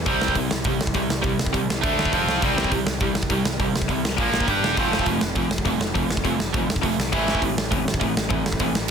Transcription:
0.06 C2 C3 G3 C4, kick, open hi-hat
0.21 C2, snare
0.28 kick
0.35 C2 C3 G3, kick, open hi-hat
0.51 C2, snare
0.64 C2 C3 G3, kick, open hi-hat
0.81 C2, snare
0.87 kick
0.94 C2 C3 G3, kick, open hi-hat
1.10 C2, snare
1.22 C2 C3 G3, kick, open hi-hat
1.39 C2, snare
1.46 kick
1.53 C2 C3 G3, kick, open hi-hat
1.69 C2, snare
1.83 D2 D3 A3 D4, kick, open hi-hat
1.98 D2, snare
2.05 kick
2.13 F1 F3 C4 F4, kick, open hi-hat
2.27 C2, snare
2.42 C2 C3 G3 C4, kick, open hi-hat
2.58 C2, snare
2.64 kick
2.71 C2 C3 G3, kick, open hi-hat
2.85 C2, snare
3.00 C2 C3 G3, kick, open hi-hat
3.14 C2, snare
3.23 kick
3.30 C2 C3 G3, kick, open hi-hat
3.44 C2, snare
3.59 C2 C3 G3, kick, open hi-hat
3.73 C2, snare
3.82 kick
3.88 C2 C3 G3, kick, open hi-hat
4.03 C2, snare
4.16 A#1 A#2 F3 A#3, kick, open hi-hat
4.31 A#1, snare
4.40 kick
4.47 G1 G3 D4 G4, kick, open hi-hat
4.63 E1, snare
4.77 F1 F3 A3 C4 F4, kick, open hi-hat
4.92 F1, snare
4.99 kick
5.06 F1 F3 A3 C4, kick, open hi-hat
5.21 F1, snare
5.35 F1 F3 A3 C4, kick, open hi-hat
5.49 F1, snare
5.58 kick
5.65 F1 F3 A3 C4, kick, open hi-hat
5.78 F1, snare
5.94 F1 F3 A3 C4, kick, open hi-hat
6.10 F1, snare
6.17 kick
6.24 F1 F3 A3 C4, kick, open hi-hat
6.39 F1, snare
6.54 F1 F3 A3 C4, kick, open hi-hat
6.67 F1, snare
6.76 kick
6.82 F1 F3 A3 C4, kick, open hi-hat
6.98 C2, snare
7.12 A1 A2 E3 A3 C4 E4, kick, open hi-hat
7.27 A1, snare
7.35 kick
7.40 A1 A2 E3 A3 C4, kick, open hi-hat
7.56 A1, snare
7.71 A1 A2 E3 A3 C4, kick, open hi-hat
7.85 A1, snare
7.94 kick
8.00 A1 A2 E3 A3 C4, kick, open hi-hat
8.15 A1, snare
8.29 A1 A2 E3 A3 C4, kick, open hi-hat
8.46 A1, snare
8.53 kick
8.60 A1 A2 E3 A3 C4, kick, open hi-hat
8.75 A1, snare

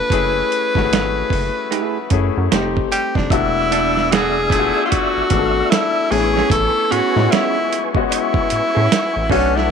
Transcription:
Already playing: A#2 D4 F4 A4 B4
0.10 F#1 A3 C#4 E4 G#4, kick, closed hi-hat
0.52 closed hi-hat
0.75 G#1 A3 C#4 E4 F#4, kick, snare
0.84 G#4
0.92 G#1, snare, closed hi-hat
1.30 F#1, kick, open hi-hat
1.71 G#3 E4 G#4, closed hi-hat
1.82 A3
2.10 F#2 A3 C#4 E4 G#4, kick, closed hi-hat
2.37 F#2
2.52 F1 A3 C4 D#4 G4, snare, closed hi-hat
2.77 kick
2.92 G4, closed hi-hat
3.15 F1 D4, kick, snare
3.30 E1 A3 B3 D4 E4 F#4 D5 E5 E6, kick, closed hi-hat
3.71 A3 B3 D4 A4, closed hi-hat
3.97 snare
4.11 B3 D4 F#4 G#4 A4, snare, closed hi-hat
4.50 A3 B3 D4 E4 F4, kick, closed hi-hat
4.59 F#4
4.86 F4
4.91 F#4, kick, closed hi-hat
5.17 G#1
5.30 G#1 A3 B3 D4 G#4, kick, closed hi-hat
5.39 A4
5.70 E4, snare, closed hi-hat
6.10 A1 A3 B3 C#4 D4 G#4 B4 G#5 C#6, open hi-hat
6.19 E4
6.36 B3 C#4 G#4, snare
6.50 A1 A4, kick, closed hi-hat
6.91 A2 B3 C#4 F#4 G#4, closed hi-hat
7.15 A2 G#3 B3 C#4 F4, snare
7.24 F#4
7.30 B3 C#4 E4 G#4, snare, closed hi-hat
7.73 closed hi-hat
7.95 G#3 B3 C#4 F#4, kick
8.10 E4, closed hi-hat
8.34 kick
8.50 A2, closed hi-hat
8.75 A2 B3 C#4 G#4
8.92 snare, closed hi-hat
9.16 A1
9.30 B1 A3 C#4 D4 F#4 A4 B4 C#5 F#5 A5, kick, open hi-hat
9.57 E4, snare

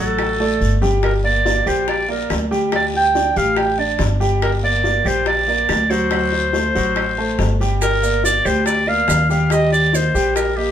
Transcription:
Already playing: A1 F#3 F#4 F#5
0.00 A4
0.19 high bongo, long guiro, claves
0.40 A3 A4 D5, high bongo
0.60 G1, short guiro
0.81 G3 G4 G5, low bongo, short guiro
1.03 A#4, high bongo, long guiro, claves
1.24 A#3 A#4 D5
1.45 A#3 A#4 D5, high bongo, short guiro
1.66 A#1 G3 G4 C5 G5, high bongo, short guiro, claves
1.88 D5, high bongo, long guiro
2.08 A#3 A#4 D5, high bongo
2.30 D2, high bongo, low bongo, short guiro, claves
2.51 G3 G4 G5, high bongo, short guiro
2.72 G3 G4 D5 G5, high bongo, long guiro, claves
2.94 G5, high bongo
3.15 D4 D5, high bongo, short guiro
3.36 A1 G3 G4 F5 G5, high bongo, short guiro
3.56 G5, high bongo, long guiro, claves
3.78 D4 D5
3.99 G1, high bongo, low bongo, short guiro
4.20 G3 G4 G5, high bongo, short guiro
4.42 A#4, high bongo, long guiro, claves
4.63 A#3 A#4 D5
4.84 A#3 A#4 D5, high bongo, short guiro
5.05 A#1 G3 G4 C5 G5, high bongo, short guiro, claves
5.26 D5, high bongo, long guiro
5.48 A#3 A#4 D5, high bongo
5.69 D2, high bongo, low bongo, short guiro, claves
5.90 F#3 F#4 C5 F#5, high bongo, short guiro
6.11 F#3 F#4 F#5, high bongo, long guiro, claves
6.32 high bongo
6.53 A3 A4 C5, high bongo, short guiro
6.75 A1 F#3 F#4 F#5, high bongo, short guiro
6.96 high bongo, long guiro, claves
7.18 A3 A4 C5
7.39 G1, high bongo, low bongo, short guiro
7.60 G3 G4 G5, high bongo, short guiro
7.81 A#4, high bongo, long guiro, claves, maracas
8.03 A#3 A#4 D5, maracas
8.24 A#3 A#4 D5, high bongo, short guiro, maracas
8.45 D2 G3 G4 C5 G5, high bongo, short guiro, claves, maracas
8.66 D5, high bongo, long guiro, maracas
8.87 A#3 A#4 D5 F5, high bongo
9.08 D#2, high bongo, low bongo, short guiro, claves, maracas
9.29 G3 G4 F5 G5, high bongo, short guiro, maracas
9.50 G3 G4 D#5 G5, high bongo, long guiro, claves, maracas
9.72 D5, high bongo, maracas
9.93 A#3 A#4 C5 D#5, high bongo, short guiro, maracas
10.14 A#1 G3 G4 G5, high bongo, short guiro, maracas
10.35 A#4, high bongo, long guiro, claves, maracas
10.56 A#3 G4 A#4 D#5

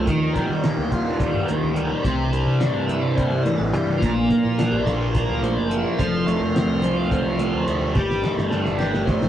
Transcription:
Already playing: C2 G2 F4
0.07 D#2 D#3 F3 G3 D#4, kick, closed hi-hat, high conga, low conga
0.35 G3, kick, snare, closed hi-hat, low conga
0.49 D#3
0.53 G4
0.63 A#3, snare, closed hi-hat
0.77 D#2, high conga
0.91 F4, kick, closed hi-hat, low conga
1.19 G3, kick, snare, closed hi-hat
1.24 G4
1.34 G2
1.47 D#2 D#3, closed hi-hat, high conga, low conga
1.62 D2
1.75 G3, closed hi-hat
1.91 low conga
2.02 C2 C3 E3 C4 D4, kick, closed hi-hat, high conga
2.06 G2
2.32 G3, closed hi-hat
2.46 C3
2.61 D4, snare, closed hi-hat
2.74 G2, high conga, low conga
2.88 E4 E5, closed hi-hat, low conga
3.02 D5
3.15 G3 C5, kick, closed hi-hat
3.31 low conga
3.43 E3 A#4, closed hi-hat, high conga
3.58 A1 A4, low conga
3.73 G2 G3 G4, snare, closed hi-hat
3.87 low conga
3.98 A#2 F3 A#3 D4 F4
4.02 A#1, kick, closed hi-hat, high conga
4.14 E4
4.30 A#3 D4, kick, closed hi-hat, low conga
4.44 A#2 E4
4.58 D4 F4, snare, closed hi-hat
4.71 A#1 G4, high conga, low conga
4.85 F4 A4, kick, closed hi-hat, low conga
5.01 A#4
5.15 F3 A#3 D4, kick, closed hi-hat
5.29 D2, low conga
5.42 A#1 F3 C5, closed hi-hat, high conga
5.57 F#1 D5, low conga
5.70 A#3 E5, closed hi-hat
5.85 low conga
5.98 F1 F3 C4 A4 F5, kick, closed hi-hat, high conga
6.26 A3 A4, closed hi-hat, low conga
6.40 F2 A#4
6.54 C4, snare, closed hi-hat
6.68 C2, high conga, low conga
6.82 F4 C5, closed hi-hat, low conga
6.96 D5
7.11 A3 C5, kick, closed hi-hat
7.24 low conga
7.38 F3 A3 C4, snare, closed hi-hat, high conga
7.53 D2
7.67 D2 A3, closed hi-hat
7.82 low conga
7.94 G1 G3 A3 D4, kick, snare, high conga
8.09 snare, low conga
8.23 A3, snare, low conga
8.37 G2, snare
8.51 D4, snare
8.65 G1, snare, high conga, low conga
8.79 G4 A4, snare, low conga
8.91 A#4, snare
9.05 A3 C5, kick, snare
9.21 A1, snare, low conga

